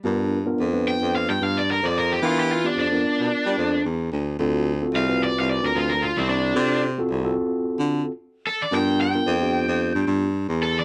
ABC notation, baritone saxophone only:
X:1
M:4/4
L:1/16
Q:"Swing 16ths" 1/4=111
K:Gmix
V:1 name="Baritone saxophone" clef=bass
G,,4 F,,3 F,,2 G,, G,,3 F,,3 | E,4 F,,2 z B,, z G, F,,2 E,,2 D,,2 | D,,4 C,,3 C,,2 D,, D,,3 C,,3 | C,4 C,,2 z3 D,2 z4 z |
G,,4 F,,3 F,,2 G,, G,,3 E,,3 |]